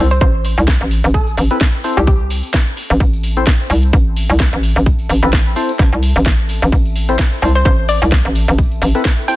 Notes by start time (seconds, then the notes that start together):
Already playing: C4 A4 A5
0.00 C2
0.11 C5, closed hi-hat, tambourine
0.20 A1 C5, kick, closed hi-hat, tambourine
0.42 E5, open hi-hat, tambourine
0.57 C2, tambourine
0.68 kick, snare, closed hi-hat, tambourine
0.81 A1, closed hi-hat
0.91 open hi-hat, tambourine
1.04 A1, tambourine
1.14 A4, kick, closed hi-hat, tambourine
1.27 closed hi-hat, tambourine
1.37 A1, open hi-hat, tambourine
1.51 C4 E4 A4 B4, closed hi-hat, tambourine
1.61 kick, snare, closed hi-hat, tambourine
1.74 tambourine
1.84 C4 E4 A4 C5, open hi-hat, tambourine
1.97 C2 G4, closed hi-hat, tambourine
2.07 G4, kick, closed hi-hat, tambourine
2.30 open hi-hat, tambourine
2.43 tambourine
2.54 kick, snare, closed hi-hat
2.67 closed hi-hat
2.77 open hi-hat, tambourine
2.90 A1, tambourine
3.00 A1, kick, closed hi-hat, tambourine
3.13 closed hi-hat, tambourine
3.23 open hi-hat, tambourine
3.36 C4 E4 A4 C5, closed hi-hat, tambourine
3.47 kick, snare, closed hi-hat, tambourine
3.60 tambourine
3.70 C2, open hi-hat, tambourine
3.83 closed hi-hat, tambourine
3.93 A1, kick, closed hi-hat, tambourine
4.16 open hi-hat, tambourine
4.30 C2, tambourine
4.40 kick, snare, tambourine
4.53 A1, closed hi-hat
4.63 open hi-hat, tambourine
4.76 A1, tambourine
4.86 kick, closed hi-hat, tambourine
4.99 closed hi-hat, tambourine
5.09 A1, open hi-hat, tambourine
5.23 A1 C4 E4 A4 B4, tambourine
5.33 kick, snare, closed hi-hat, tambourine
5.46 tambourine
5.56 C4 E4 A4 C5, open hi-hat, tambourine
5.69 closed hi-hat, tambourine
5.79 A1, kick, snare, closed hi-hat, tambourine
5.93 C2
6.02 open hi-hat, tambourine
6.16 A1, tambourine
6.26 kick, snare, tambourine
6.39 closed hi-hat
6.49 open hi-hat, tambourine
6.62 A1, tambourine
6.72 A1, kick, closed hi-hat, tambourine
6.86 closed hi-hat, tambourine
6.96 open hi-hat, tambourine
7.08 C4 E4 A4 C5, closed hi-hat, tambourine
7.19 kick, snare, closed hi-hat, tambourine
7.32 tambourine
7.42 C2 C4 E4 A4 C5, open hi-hat, tambourine
7.55 C5, closed hi-hat, tambourine
7.65 A1 C5, kick, closed hi-hat, tambourine
7.88 D5, open hi-hat, tambourine
8.01 C2, tambourine
8.12 kick, snare, closed hi-hat, tambourine
8.25 A1, closed hi-hat
8.35 open hi-hat, tambourine
8.48 A1, tambourine
8.58 kick, closed hi-hat, tambourine
8.72 closed hi-hat, tambourine
8.82 A1, open hi-hat, tambourine
8.95 C4 E4 A4 B4, closed hi-hat, tambourine
9.05 kick, snare, closed hi-hat, tambourine
9.18 tambourine
9.28 C4 E4 A4 C5 G5, open hi-hat, tambourine